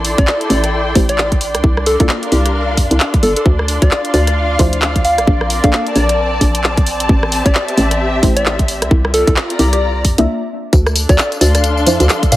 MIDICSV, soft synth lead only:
0, 0, Header, 1, 2, 480
1, 0, Start_track
1, 0, Key_signature, -1, "minor"
1, 0, Tempo, 454545
1, 1730, Time_signature, 4, 2, 24, 8
1, 13057, End_track
2, 0, Start_track
2, 0, Title_t, "Soft synth lead"
2, 0, Program_c, 0, 80
2, 194, Note_on_c, 0, 74, 92
2, 398, Note_off_c, 0, 74, 0
2, 530, Note_on_c, 0, 74, 84
2, 622, Note_off_c, 0, 74, 0
2, 675, Note_on_c, 0, 74, 79
2, 736, Note_off_c, 0, 74, 0
2, 1154, Note_on_c, 0, 74, 91
2, 1358, Note_off_c, 0, 74, 0
2, 1970, Note_on_c, 0, 69, 89
2, 2062, Note_off_c, 0, 69, 0
2, 2114, Note_on_c, 0, 69, 75
2, 2175, Note_off_c, 0, 69, 0
2, 2450, Note_on_c, 0, 67, 85
2, 2542, Note_off_c, 0, 67, 0
2, 2595, Note_on_c, 0, 67, 75
2, 2656, Note_off_c, 0, 67, 0
2, 3410, Note_on_c, 0, 69, 85
2, 3502, Note_off_c, 0, 69, 0
2, 3556, Note_on_c, 0, 69, 79
2, 3616, Note_off_c, 0, 69, 0
2, 4035, Note_on_c, 0, 74, 95
2, 4239, Note_off_c, 0, 74, 0
2, 4370, Note_on_c, 0, 74, 83
2, 4462, Note_off_c, 0, 74, 0
2, 4515, Note_on_c, 0, 74, 78
2, 4576, Note_off_c, 0, 74, 0
2, 5330, Note_on_c, 0, 77, 92
2, 5810, Note_off_c, 0, 77, 0
2, 5956, Note_on_c, 0, 77, 88
2, 6016, Note_off_c, 0, 77, 0
2, 6051, Note_on_c, 0, 77, 76
2, 6143, Note_off_c, 0, 77, 0
2, 6291, Note_on_c, 0, 74, 93
2, 6675, Note_off_c, 0, 74, 0
2, 7875, Note_on_c, 0, 74, 95
2, 8079, Note_off_c, 0, 74, 0
2, 8211, Note_on_c, 0, 74, 87
2, 8302, Note_off_c, 0, 74, 0
2, 8353, Note_on_c, 0, 74, 78
2, 8415, Note_off_c, 0, 74, 0
2, 8834, Note_on_c, 0, 74, 95
2, 9038, Note_off_c, 0, 74, 0
2, 9650, Note_on_c, 0, 69, 93
2, 9742, Note_off_c, 0, 69, 0
2, 9794, Note_on_c, 0, 69, 77
2, 9855, Note_off_c, 0, 69, 0
2, 10131, Note_on_c, 0, 67, 85
2, 10223, Note_off_c, 0, 67, 0
2, 10274, Note_on_c, 0, 67, 77
2, 10336, Note_off_c, 0, 67, 0
2, 11715, Note_on_c, 0, 74, 95
2, 11919, Note_off_c, 0, 74, 0
2, 12050, Note_on_c, 0, 74, 88
2, 12142, Note_off_c, 0, 74, 0
2, 12195, Note_on_c, 0, 74, 78
2, 12256, Note_off_c, 0, 74, 0
2, 13010, Note_on_c, 0, 77, 96
2, 13057, Note_off_c, 0, 77, 0
2, 13057, End_track
0, 0, End_of_file